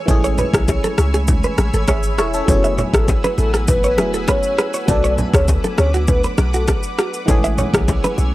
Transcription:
0.00 2.44 C#5 medium
0.00 2.44 G#5 medium
0.00 4.84 E6 medium
0.06 0.43 A1 loud
0.06 2.43 E3 medium
0.06 2.44 G#3 medium
0.06 2.44 A3 medium
0.06 1.56 C#4 medium
0.06 2.46 B5 medium
0.06 kick loud
0.06 low conga medium
0.06 shaker medium
0.11 1.56 G#4 medium
0.24 0.32 C#5 medium
0.24 shaker medium
0.38 0.47 B4 medium
0.38 low conga medium
0.38 shaker medium
0.54 0.77 B1 medium
0.54 kick medium
0.54 cross-stick loud
0.54 shaker medium
0.68 kick medium
0.68 high bongo medium
0.68 shaker medium
0.84 0.92 A4 medium
0.84 low bongo medium
0.84 shaker medium
0.98 1.45 C#2 medium
0.98 cross-stick loud
0.98 high bongo medium
0.98 shaker medium
1.14 1.22 G#4 medium
1.14 high bongo medium
1.14 shaker medium
1.28 kick loud
1.28 low conga medium
1.28 shaker medium
1.44 1.52 B4 medium
1.44 shaker medium
1.58 1.70 A1 medium
1.58 cross-stick medium
1.58 low bongo medium
1.58 shaker medium
1.74 1.85 G#1 medium
1.74 1.82 A4 medium
1.74 shaker medium
1.88 2.20 G#1 loud
1.88 2.17 G#4 medium
1.88 1.97 C#5 medium
1.88 2.17 E5 medium
1.88 kick medium
1.88 cross-stick medium
1.88 high bongo medium
1.88 shaker medium
2.03 shaker medium
2.18 2.41 E1 loud
2.18 2.33 E4 medium
2.18 2.27 A4 medium
2.18 2.33 C#5 medium
2.18 cross-stick loud
2.18 shaker medium
2.34 2.63 C#4 medium
2.34 2.62 A4 medium
2.34 shaker medium
2.46 2.83 F#1 loud
2.46 3.94 F#3 medium
2.46 3.95 A3 medium
2.46 3.95 B3 medium
2.46 3.96 E4 medium
2.46 4.86 B4 medium
2.46 2.74 C#5 loud
2.46 4.86 F#5 medium
2.46 4.86 G#5 medium
2.46 kick loud
2.46 low conga medium
2.46 shaker medium
2.51 3.97 G#4 medium
2.64 2.72 E5 medium
2.64 shaker medium
2.78 2.87 C#5 medium
2.78 low conga medium
2.78 shaker medium
2.94 3.17 A1 medium
2.94 3.06 A4 medium
2.94 kick medium
2.94 cross-stick loud
2.94 shaker medium
3.08 kick medium
3.08 high bongo medium
3.08 shaker medium
3.24 3.32 B4 medium
3.24 low bongo medium
3.24 shaker medium
3.38 4.00 A1 loud
3.38 3.52 A4 loud
3.38 high bongo medium
3.38 shaker medium
3.54 3.62 A4 medium
3.54 cross-stick medium
3.54 shaker medium
3.68 4.11 B4 loud
3.68 kick loud
3.68 low conga medium
3.68 shaker medium
3.84 3.92 C#5 medium
3.84 shaker medium
3.97 4.33 E1 medium
3.97 4.85 F#3 medium
3.97 4.86 A3 soft
3.97 4.87 B3 soft
3.97 4.89 E4 soft
3.97 4.89 G#4 medium
3.97 cross-stick medium
3.97 low bongo medium
3.97 shaker medium
4.14 4.22 A4 medium
4.14 shaker medium
4.28 4.37 B4 medium
4.28 4.71 C#5 medium
4.28 kick medium
4.28 cross-stick medium
4.28 high bongo medium
4.28 shaker medium
4.43 shaker medium
4.58 4.67 B4 medium
4.58 cross-stick loud
4.58 shaker medium
4.74 4.82 C#5 medium
4.74 shaker medium
4.86 5.23 B1 loud
4.86 7.23 F#3 medium
4.86 7.24 A3 medium
4.86 7.24 B3 medium
4.86 7.25 D4 medium
4.86 7.26 B4 medium
4.86 5.14 D5 loud
4.86 7.26 F#5 medium
4.86 7.26 D6 medium
4.86 kick loud
4.86 low conga medium
4.86 shaker medium
4.91 7.26 A4 medium
5.04 5.18 C#5 medium
5.04 shaker medium
5.18 5.27 B4 medium
5.18 low conga medium
5.18 shaker medium
5.34 5.57 D2 medium
5.34 5.46 C#5 medium
5.34 kick loud
5.34 cross-stick loud
5.34 shaker medium
5.48 kick medium
5.48 high bongo medium
5.48 shaker medium
5.64 5.72 A4 medium
5.64 low bongo medium
5.64 shaker medium
5.78 6.25 D2 medium
5.78 5.92 C#5 medium
5.78 cross-stick loud
5.78 high bongo medium
5.78 shaker medium
5.94 6.02 F#4 medium
5.94 shaker medium
6.08 6.22 B4 medium
6.08 kick loud
6.08 low conga medium
6.08 shaker medium
6.24 6.32 B4 medium
6.24 shaker medium
6.38 6.73 B1 medium
6.38 cross-stick medium
6.38 low bongo medium
6.38 shaker medium
6.54 6.62 F#4 medium
6.54 6.67 A4 medium
6.54 shaker medium
6.68 6.77 A4 medium
6.68 kick medium
6.68 cross-stick medium
6.68 high bongo medium
6.68 shaker medium
6.83 shaker medium
6.99 7.07 F#4 medium
6.99 cross-stick loud
6.99 shaker medium
7.14 shaker medium
7.26 7.63 A1 loud
7.26 8.34 E3 medium
7.26 8.34 G#3 medium
7.26 8.34 A3 medium
7.26 8.34 C#4 medium
7.26 8.34 C#5 medium
7.26 8.34 G#5 medium
7.26 8.34 E6 medium
7.26 kick loud
7.26 low conga medium
7.26 shaker medium
7.31 8.34 G#4 medium
7.44 7.52 E5 medium
7.44 shaker medium
7.58 7.67 C#5 medium
7.58 low conga medium
7.58 shaker medium
7.74 7.97 B1 loud
7.74 kick medium
7.74 cross-stick loud
7.74 shaker medium
7.88 kick medium
7.88 high bongo medium
7.88 shaker medium
8.04 8.12 B4 medium
8.04 low bongo medium
8.04 shaker medium
8.18 8.34 B1 medium
8.18 high bongo medium
8.18 shaker medium

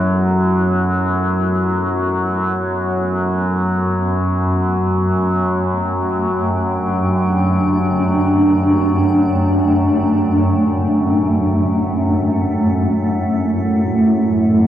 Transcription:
0.00 14.67 F#2 medium
0.00 14.67 F#3 medium
0.00 2.71 A3 medium
0.00 4.66 B3 medium
0.00 2.71 E4 medium
0.00 2.70 A4 medium
2.70 14.67 F#2 medium
3.98 14.67 A3 medium
4.80 13.67 G5 medium
6.16 12.88 D4 medium
12.55 14.67 E4 medium
13.34 14.67 A4 medium

